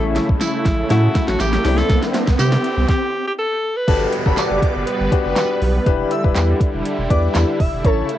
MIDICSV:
0, 0, Header, 1, 9, 480
1, 0, Start_track
1, 0, Key_signature, 1, "major"
1, 0, Tempo, 495868
1, 1836, Time_signature, 4, 2, 24, 8
1, 7919, End_track
2, 0, Start_track
2, 0, Title_t, "Digital synth lead"
2, 0, Program_c, 0, 84
2, 3757, Note_on_c, 0, 69, 108
2, 3860, Note_off_c, 0, 69, 0
2, 4121, Note_on_c, 0, 71, 77
2, 4214, Note_off_c, 0, 71, 0
2, 4235, Note_on_c, 0, 74, 87
2, 4431, Note_off_c, 0, 74, 0
2, 4477, Note_on_c, 0, 74, 75
2, 4580, Note_off_c, 0, 74, 0
2, 5917, Note_on_c, 0, 76, 83
2, 6020, Note_off_c, 0, 76, 0
2, 6878, Note_on_c, 0, 74, 78
2, 6981, Note_off_c, 0, 74, 0
2, 7358, Note_on_c, 0, 76, 83
2, 7461, Note_off_c, 0, 76, 0
2, 7598, Note_on_c, 0, 69, 123
2, 7701, Note_off_c, 0, 69, 0
2, 7919, End_track
3, 0, Start_track
3, 0, Title_t, "Alto saxophone"
3, 0, Program_c, 1, 65
3, 395, Note_on_c, 1, 64, 90
3, 842, Note_off_c, 1, 64, 0
3, 873, Note_on_c, 1, 64, 92
3, 1239, Note_on_c, 1, 66, 94
3, 1253, Note_off_c, 1, 64, 0
3, 1352, Note_on_c, 1, 67, 109
3, 1366, Note_off_c, 1, 66, 0
3, 1719, Note_on_c, 1, 69, 99
3, 1733, Note_off_c, 1, 67, 0
3, 1961, Note_off_c, 1, 69, 0
3, 2316, Note_on_c, 1, 67, 94
3, 2762, Note_off_c, 1, 67, 0
3, 2795, Note_on_c, 1, 67, 97
3, 3137, Note_off_c, 1, 67, 0
3, 3166, Note_on_c, 1, 67, 90
3, 3216, Note_off_c, 1, 67, 0
3, 3277, Note_on_c, 1, 69, 110
3, 3646, Note_on_c, 1, 71, 95
3, 3661, Note_off_c, 1, 69, 0
3, 3885, Note_off_c, 1, 71, 0
3, 7919, End_track
4, 0, Start_track
4, 0, Title_t, "Grand piano"
4, 0, Program_c, 2, 0
4, 0, Note_on_c, 2, 57, 78
4, 0, Note_on_c, 2, 61, 70
4, 0, Note_on_c, 2, 64, 84
4, 525, Note_off_c, 2, 57, 0
4, 526, Note_off_c, 2, 61, 0
4, 527, Note_off_c, 2, 64, 0
4, 873, Note_on_c, 2, 57, 71
4, 876, Note_on_c, 2, 61, 64
4, 879, Note_on_c, 2, 66, 80
4, 1329, Note_off_c, 2, 57, 0
4, 1330, Note_off_c, 2, 61, 0
4, 1331, Note_off_c, 2, 66, 0
4, 1595, Note_on_c, 2, 60, 81
4, 1598, Note_on_c, 2, 62, 77
4, 1600, Note_on_c, 2, 64, 92
4, 2366, Note_off_c, 2, 60, 0
4, 2368, Note_off_c, 2, 62, 0
4, 2369, Note_off_c, 2, 64, 0
4, 3753, Note_on_c, 2, 62, 76
4, 3755, Note_on_c, 2, 66, 67
4, 3756, Note_on_c, 2, 67, 70
4, 3758, Note_on_c, 2, 71, 87
4, 3982, Note_off_c, 2, 62, 0
4, 3983, Note_off_c, 2, 66, 0
4, 3983, Note_off_c, 2, 67, 0
4, 3984, Note_off_c, 2, 71, 0
4, 4121, Note_on_c, 2, 62, 76
4, 4123, Note_on_c, 2, 66, 74
4, 4124, Note_on_c, 2, 67, 72
4, 4125, Note_on_c, 2, 69, 83
4, 4647, Note_off_c, 2, 62, 0
4, 4648, Note_off_c, 2, 66, 0
4, 4649, Note_off_c, 2, 67, 0
4, 4649, Note_off_c, 2, 69, 0
4, 4954, Note_on_c, 2, 62, 93
4, 4955, Note_on_c, 2, 66, 84
4, 4957, Note_on_c, 2, 67, 82
4, 4959, Note_on_c, 2, 71, 97
4, 5409, Note_off_c, 2, 62, 0
4, 5410, Note_off_c, 2, 66, 0
4, 5410, Note_off_c, 2, 67, 0
4, 5412, Note_off_c, 2, 71, 0
4, 5674, Note_on_c, 2, 62, 90
4, 5675, Note_on_c, 2, 64, 81
4, 5676, Note_on_c, 2, 67, 86
4, 5678, Note_on_c, 2, 71, 105
4, 5902, Note_off_c, 2, 62, 0
4, 5903, Note_off_c, 2, 64, 0
4, 5903, Note_off_c, 2, 67, 0
4, 5904, Note_off_c, 2, 71, 0
4, 6039, Note_on_c, 2, 62, 73
4, 6041, Note_on_c, 2, 64, 74
4, 6043, Note_on_c, 2, 67, 69
4, 6044, Note_on_c, 2, 71, 85
4, 6566, Note_off_c, 2, 62, 0
4, 6567, Note_off_c, 2, 64, 0
4, 6568, Note_off_c, 2, 67, 0
4, 6568, Note_off_c, 2, 71, 0
4, 6873, Note_on_c, 2, 62, 78
4, 6874, Note_on_c, 2, 64, 74
4, 6876, Note_on_c, 2, 67, 69
4, 6877, Note_on_c, 2, 71, 82
4, 7328, Note_off_c, 2, 62, 0
4, 7329, Note_off_c, 2, 64, 0
4, 7330, Note_off_c, 2, 67, 0
4, 7331, Note_off_c, 2, 71, 0
4, 7593, Note_on_c, 2, 61, 78
4, 7596, Note_on_c, 2, 64, 74
4, 7597, Note_on_c, 2, 69, 75
4, 7599, Note_on_c, 2, 73, 86
4, 7822, Note_off_c, 2, 61, 0
4, 7823, Note_off_c, 2, 64, 0
4, 7824, Note_off_c, 2, 69, 0
4, 7824, Note_off_c, 2, 73, 0
4, 7919, End_track
5, 0, Start_track
5, 0, Title_t, "Supersaw synth"
5, 0, Program_c, 3, 81
5, 0, Note_on_c, 3, 49, 79
5, 0, Note_on_c, 3, 57, 73
5, 0, Note_on_c, 3, 64, 86
5, 1577, Note_off_c, 3, 57, 0
5, 1578, Note_off_c, 3, 49, 0
5, 1596, Note_on_c, 3, 50, 76
5, 1597, Note_on_c, 3, 60, 71
5, 2756, Note_off_c, 3, 64, 0
5, 2784, Note_off_c, 3, 50, 0
5, 2785, Note_off_c, 3, 60, 0
5, 3756, Note_on_c, 3, 55, 80
5, 3756, Note_on_c, 3, 59, 75
5, 3757, Note_on_c, 3, 71, 90
5, 5657, Note_off_c, 3, 55, 0
5, 5657, Note_off_c, 3, 59, 0
5, 5657, Note_off_c, 3, 71, 0
5, 5675, Note_on_c, 3, 50, 83
5, 5675, Note_on_c, 3, 55, 73
5, 5675, Note_on_c, 3, 64, 85
5, 7576, Note_off_c, 3, 50, 0
5, 7576, Note_off_c, 3, 55, 0
5, 7598, Note_on_c, 3, 49, 83
5, 7600, Note_on_c, 3, 57, 71
5, 7919, Note_off_c, 3, 49, 0
5, 7919, Note_off_c, 3, 57, 0
5, 7919, Note_off_c, 3, 64, 0
5, 7919, End_track
6, 0, Start_track
6, 0, Title_t, "Sub bass"
6, 0, Program_c, 4, 38
6, 0, Note_on_c, 4, 33, 114
6, 182, Note_off_c, 4, 33, 0
6, 282, Note_on_c, 4, 35, 86
6, 365, Note_off_c, 4, 35, 0
6, 634, Note_on_c, 4, 33, 90
6, 809, Note_off_c, 4, 33, 0
6, 876, Note_on_c, 4, 45, 109
6, 1051, Note_off_c, 4, 45, 0
6, 1243, Note_on_c, 4, 33, 87
6, 1325, Note_off_c, 4, 33, 0
6, 1357, Note_on_c, 4, 33, 94
6, 1531, Note_off_c, 4, 33, 0
6, 1596, Note_on_c, 4, 36, 94
6, 1771, Note_off_c, 4, 36, 0
6, 1834, Note_on_c, 4, 36, 113
6, 1927, Note_off_c, 4, 36, 0
6, 2203, Note_on_c, 4, 36, 91
6, 2285, Note_off_c, 4, 36, 0
6, 2316, Note_on_c, 4, 48, 97
6, 2491, Note_off_c, 4, 48, 0
6, 2683, Note_on_c, 4, 36, 99
6, 2765, Note_off_c, 4, 36, 0
6, 3756, Note_on_c, 4, 31, 114
6, 3931, Note_off_c, 4, 31, 0
6, 4124, Note_on_c, 4, 31, 95
6, 4206, Note_off_c, 4, 31, 0
6, 4363, Note_on_c, 4, 30, 86
6, 4445, Note_off_c, 4, 30, 0
6, 4602, Note_on_c, 4, 30, 89
6, 4685, Note_off_c, 4, 30, 0
6, 4843, Note_on_c, 4, 31, 87
6, 4925, Note_off_c, 4, 31, 0
6, 5083, Note_on_c, 4, 30, 95
6, 5165, Note_off_c, 4, 30, 0
6, 5436, Note_on_c, 4, 35, 89
6, 5611, Note_off_c, 4, 35, 0
6, 5675, Note_on_c, 4, 28, 113
6, 5850, Note_off_c, 4, 28, 0
6, 6044, Note_on_c, 4, 28, 96
6, 6126, Note_off_c, 4, 28, 0
6, 6157, Note_on_c, 4, 40, 103
6, 6331, Note_off_c, 4, 40, 0
6, 6524, Note_on_c, 4, 28, 91
6, 6606, Note_off_c, 4, 28, 0
6, 6763, Note_on_c, 4, 28, 101
6, 6845, Note_off_c, 4, 28, 0
6, 6878, Note_on_c, 4, 40, 106
6, 7052, Note_off_c, 4, 40, 0
6, 7118, Note_on_c, 4, 40, 101
6, 7210, Note_off_c, 4, 40, 0
6, 7358, Note_on_c, 4, 28, 90
6, 7450, Note_off_c, 4, 28, 0
6, 7485, Note_on_c, 4, 28, 98
6, 7566, Note_off_c, 4, 28, 0
6, 7596, Note_on_c, 4, 33, 113
6, 7771, Note_off_c, 4, 33, 0
6, 7919, End_track
7, 0, Start_track
7, 0, Title_t, "Downlifter"
7, 0, Program_c, 5, 103
7, 3756, Note_on_c, 5, 60, 85
7, 7596, Note_off_c, 5, 60, 0
7, 7919, End_track
8, 0, Start_track
8, 0, Title_t, "Riser"
8, 0, Program_c, 6, 103
8, 0, Note_on_c, 6, 60, 78
8, 2795, Note_off_c, 6, 60, 0
8, 7919, End_track
9, 0, Start_track
9, 0, Title_t, "Drums"
9, 152, Note_on_c, 9, 42, 87
9, 155, Note_on_c, 9, 38, 95
9, 249, Note_off_c, 9, 42, 0
9, 252, Note_off_c, 9, 38, 0
9, 283, Note_on_c, 9, 36, 96
9, 380, Note_off_c, 9, 36, 0
9, 394, Note_on_c, 9, 38, 94
9, 395, Note_on_c, 9, 54, 90
9, 396, Note_on_c, 9, 42, 93
9, 491, Note_off_c, 9, 38, 0
9, 492, Note_off_c, 9, 54, 0
9, 493, Note_off_c, 9, 42, 0
9, 634, Note_on_c, 9, 36, 101
9, 634, Note_on_c, 9, 38, 97
9, 635, Note_on_c, 9, 42, 80
9, 731, Note_off_c, 9, 36, 0
9, 731, Note_off_c, 9, 38, 0
9, 732, Note_off_c, 9, 42, 0
9, 873, Note_on_c, 9, 42, 102
9, 875, Note_on_c, 9, 38, 103
9, 970, Note_off_c, 9, 42, 0
9, 971, Note_off_c, 9, 38, 0
9, 1115, Note_on_c, 9, 38, 103
9, 1116, Note_on_c, 9, 36, 105
9, 1116, Note_on_c, 9, 42, 91
9, 1211, Note_off_c, 9, 38, 0
9, 1213, Note_off_c, 9, 36, 0
9, 1213, Note_off_c, 9, 42, 0
9, 1241, Note_on_c, 9, 38, 104
9, 1338, Note_off_c, 9, 38, 0
9, 1354, Note_on_c, 9, 38, 103
9, 1355, Note_on_c, 9, 42, 81
9, 1355, Note_on_c, 9, 54, 76
9, 1451, Note_off_c, 9, 38, 0
9, 1452, Note_off_c, 9, 42, 0
9, 1452, Note_off_c, 9, 54, 0
9, 1481, Note_on_c, 9, 38, 100
9, 1578, Note_off_c, 9, 38, 0
9, 1595, Note_on_c, 9, 38, 107
9, 1596, Note_on_c, 9, 46, 70
9, 1692, Note_off_c, 9, 38, 0
9, 1693, Note_off_c, 9, 46, 0
9, 1721, Note_on_c, 9, 38, 102
9, 1818, Note_off_c, 9, 38, 0
9, 1835, Note_on_c, 9, 36, 122
9, 1835, Note_on_c, 9, 38, 110
9, 1835, Note_on_c, 9, 42, 76
9, 1932, Note_off_c, 9, 36, 0
9, 1932, Note_off_c, 9, 38, 0
9, 1932, Note_off_c, 9, 42, 0
9, 1962, Note_on_c, 9, 38, 110
9, 2058, Note_off_c, 9, 38, 0
9, 2072, Note_on_c, 9, 42, 86
9, 2075, Note_on_c, 9, 38, 117
9, 2169, Note_off_c, 9, 42, 0
9, 2172, Note_off_c, 9, 38, 0
9, 2201, Note_on_c, 9, 38, 110
9, 2203, Note_on_c, 9, 36, 96
9, 2298, Note_off_c, 9, 38, 0
9, 2300, Note_off_c, 9, 36, 0
9, 2314, Note_on_c, 9, 38, 113
9, 2316, Note_on_c, 9, 42, 93
9, 2316, Note_on_c, 9, 54, 98
9, 2411, Note_off_c, 9, 38, 0
9, 2412, Note_off_c, 9, 54, 0
9, 2413, Note_off_c, 9, 42, 0
9, 2441, Note_on_c, 9, 38, 114
9, 2538, Note_off_c, 9, 38, 0
9, 2557, Note_on_c, 9, 42, 78
9, 2654, Note_off_c, 9, 42, 0
9, 2794, Note_on_c, 9, 38, 94
9, 2795, Note_on_c, 9, 36, 111
9, 2891, Note_off_c, 9, 38, 0
9, 2892, Note_off_c, 9, 36, 0
9, 3755, Note_on_c, 9, 36, 117
9, 3755, Note_on_c, 9, 42, 79
9, 3756, Note_on_c, 9, 49, 104
9, 3852, Note_off_c, 9, 36, 0
9, 3852, Note_off_c, 9, 42, 0
9, 3853, Note_off_c, 9, 49, 0
9, 3993, Note_on_c, 9, 42, 90
9, 4090, Note_off_c, 9, 42, 0
9, 4124, Note_on_c, 9, 36, 95
9, 4221, Note_off_c, 9, 36, 0
9, 4231, Note_on_c, 9, 38, 87
9, 4236, Note_on_c, 9, 39, 107
9, 4236, Note_on_c, 9, 54, 97
9, 4238, Note_on_c, 9, 42, 96
9, 4328, Note_off_c, 9, 38, 0
9, 4332, Note_off_c, 9, 39, 0
9, 4333, Note_off_c, 9, 54, 0
9, 4334, Note_off_c, 9, 42, 0
9, 4475, Note_on_c, 9, 36, 105
9, 4477, Note_on_c, 9, 42, 82
9, 4572, Note_off_c, 9, 36, 0
9, 4574, Note_off_c, 9, 42, 0
9, 4714, Note_on_c, 9, 42, 105
9, 4811, Note_off_c, 9, 42, 0
9, 4957, Note_on_c, 9, 36, 101
9, 4957, Note_on_c, 9, 42, 93
9, 5053, Note_off_c, 9, 36, 0
9, 5053, Note_off_c, 9, 42, 0
9, 5191, Note_on_c, 9, 38, 104
9, 5195, Note_on_c, 9, 39, 121
9, 5196, Note_on_c, 9, 42, 82
9, 5196, Note_on_c, 9, 54, 75
9, 5288, Note_off_c, 9, 38, 0
9, 5292, Note_off_c, 9, 39, 0
9, 5293, Note_off_c, 9, 42, 0
9, 5293, Note_off_c, 9, 54, 0
9, 5437, Note_on_c, 9, 46, 71
9, 5533, Note_off_c, 9, 46, 0
9, 5675, Note_on_c, 9, 36, 116
9, 5676, Note_on_c, 9, 42, 81
9, 5772, Note_off_c, 9, 36, 0
9, 5772, Note_off_c, 9, 42, 0
9, 5913, Note_on_c, 9, 42, 90
9, 6010, Note_off_c, 9, 42, 0
9, 6044, Note_on_c, 9, 36, 97
9, 6140, Note_off_c, 9, 36, 0
9, 6150, Note_on_c, 9, 38, 85
9, 6155, Note_on_c, 9, 39, 114
9, 6156, Note_on_c, 9, 54, 97
9, 6157, Note_on_c, 9, 42, 95
9, 6247, Note_off_c, 9, 38, 0
9, 6252, Note_off_c, 9, 39, 0
9, 6253, Note_off_c, 9, 42, 0
9, 6253, Note_off_c, 9, 54, 0
9, 6395, Note_on_c, 9, 36, 102
9, 6398, Note_on_c, 9, 42, 83
9, 6492, Note_off_c, 9, 36, 0
9, 6495, Note_off_c, 9, 42, 0
9, 6636, Note_on_c, 9, 42, 107
9, 6733, Note_off_c, 9, 42, 0
9, 6877, Note_on_c, 9, 36, 103
9, 6878, Note_on_c, 9, 42, 92
9, 6974, Note_off_c, 9, 36, 0
9, 6974, Note_off_c, 9, 42, 0
9, 7112, Note_on_c, 9, 38, 102
9, 7116, Note_on_c, 9, 54, 78
9, 7117, Note_on_c, 9, 39, 127
9, 7118, Note_on_c, 9, 42, 85
9, 7209, Note_off_c, 9, 38, 0
9, 7213, Note_off_c, 9, 39, 0
9, 7213, Note_off_c, 9, 54, 0
9, 7214, Note_off_c, 9, 42, 0
9, 7358, Note_on_c, 9, 36, 93
9, 7359, Note_on_c, 9, 46, 67
9, 7454, Note_off_c, 9, 36, 0
9, 7456, Note_off_c, 9, 46, 0
9, 7596, Note_on_c, 9, 36, 122
9, 7596, Note_on_c, 9, 42, 80
9, 7693, Note_off_c, 9, 36, 0
9, 7693, Note_off_c, 9, 42, 0
9, 7833, Note_on_c, 9, 42, 89
9, 7919, Note_off_c, 9, 42, 0
9, 7919, End_track
0, 0, End_of_file